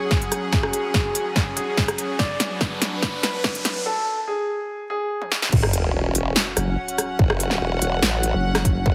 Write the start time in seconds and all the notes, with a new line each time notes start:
Already playing: F#3 C#4 G#4 F#5, riser
0.11 kick, snare
0.22 closed hi-hat
0.32 cross-stick, closed hi-hat
0.52 G#4, kick, snare
0.63 cross-stick
0.73 closed hi-hat
0.94 G#4, kick, snare
1.15 closed hi-hat
1.36 kick, snare
1.57 G#4, closed hi-hat
1.77 kick, snare
1.88 cross-stick, closed hi-hat
1.98 closed hi-hat
2.19 F#3 D4 B4 D5, kick, snare
2.40 snare, closed hi-hat
2.61 kick, snare
2.66 D4
2.82 snare, closed hi-hat
2.94 B4
3.02 kick, snare
3.23 B4, snare, closed hi-hat
3.44 kick, snare
3.55 closed hi-hat
3.65 snare, closed hi-hat
3.86 A4
4.28 G#4
4.90 G#4
5.22 high tom
5.32 snare
5.42 snare
5.52 F#1 F#3 C#4 C#5, kick, crash, sub drop
5.62 F#4, cross-stick
5.73 closed hi-hat
5.94 E1
6.15 E1, closed hi-hat
6.36 snare
6.48 F#5
6.57 F#1, cross-stick, closed hi-hat
6.88 closed hi-hat
6.98 cross-stick, closed hi-hat
7.19 F#1, kick
7.30 cross-stick
7.40 closed hi-hat
7.51 snare
7.61 E1
7.82 E1, closed hi-hat
8.02 A1, snare
8.23 closed hi-hat
8.34 F#1
8.55 cross-stick, snare, closed hi-hat
8.65 kick, closed hi-hat
8.86 F#1, kick